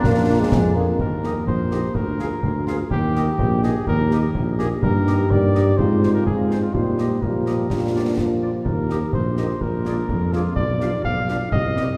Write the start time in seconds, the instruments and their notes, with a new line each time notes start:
Already playing: trombone section D4, woodwind section D4, cornet A#4, glockenspiel A#5, piccolo A#5
0.03 tuba A#1, euphonium A#3, concert bass drum, snare
0.28 french horn section A#3 D4 F4
0.40 euphonium G#3
0.52 tuba F2, concert bass drum, snare
0.76 euphonium A#3, french horn section A#3 D4 F4, cornet G#4
0.99 tuba D#2, cornet A#4, concert bass drum
1.23 french horn section A#3 D#4 G4, woodwind section G4 D#5, snare
1.47 tuba A#1, cornet C5, concert bass drum
1.71 french horn section A#3 D#4 G4, woodwind section G4 D#5, snare
1.95 tuba D2, cornet A#4, concert bass drum
2.19 french horn section A#3 F4 G#4, woodwind section G#4 F5, snare
2.43 tuba D2, concert bass drum
2.66 french horn section A#3 F4 G#4, cornet F4, woodwind section G#4 F5, snare
2.90 tuba D#2, cornet G4, concert bass drum
3.15 french horn section A#3 D#4 G4, woodwind section G4 D#5, snare
3.38 tuba A#1, concert bass drum
3.63 french horn section A#3 D#4 G4, woodwind section G4 D#5, cornet G#4, snare
3.86 tuba D#2, cornet A#4, concert bass drum
4.11 french horn section A#3 D#4 G4, woodwind section G4 D#5, snare
4.35 tuba A#1, concert bass drum
4.58 french horn section A#3 D#4 G4, woodwind section G4 D#5, cornet G#4, snare
4.82 tuba G2, french horn section A#3 D#4 G4, cornet A#4, concert bass drum
5.07 woodwind section G4 D#5, snare
5.30 tuba G2, cornet D5, concert bass drum
5.54 woodwind section G4 D#5, snare
5.77 tuba G#2, french horn section G#3 C4 F4, cornet C5, concert bass drum
6.02 woodwind section F4 C5, snare
6.14 cornet A#4
6.25 tuba G#2, french horn section G#3 C4 F4, cornet G#4, concert bass drum
6.50 woodwind section F4 C5, snare
6.62 cornet F4
6.74 tuba A#2, french horn section G3 D#4 G4, cornet C5, concert bass drum
6.98 woodwind section G4 D#5, snare
7.22 tuba A#2, euphonium F3, french horn section G3 D#4 G4, cornet A#4, concert bass drum
7.46 woodwind section G4 D#5, snare
7.70 tuba A#2, euphonium G3, french horn section A#3 D4 F4, concert bass drum, snare
7.94 woodwind section F4 D5
8.18 tuba A#2, euphonium F3, concert bass drum, snare
8.41 woodwind section F4 D5
8.64 tuba D#2, cornet A#4, concert bass drum
8.89 french horn section A#3 D#4 G4, woodwind section G4 D#5, snare
9.13 tuba A#1, cornet C5, concert bass drum
9.37 french horn section A#3 D#4 G4, woodwind section G4 D#5, snare
9.61 tuba A#1, cornet A#4, concert bass drum
9.85 french horn section G#3 D4 F4, woodwind section G#4 D5, snare
10.09 tuba F2, concert bass drum
10.32 french horn section G#3 D4 F4, cornet F4, woodwind section G#4 D5, snare
10.55 tuba B1, cornet D5, concert bass drum
10.80 french horn section G3 D4 F4, woodwind section G4 F5, snare
11.04 tuba B1, cornet F5, concert bass drum
11.28 french horn section G3 D4 F4, woodwind section G4 F5, snare
11.52 tuba C2, cornet D#5, concert bass drum
11.76 french horn section G3 C4 D#4, woodwind section G4 D#5, snare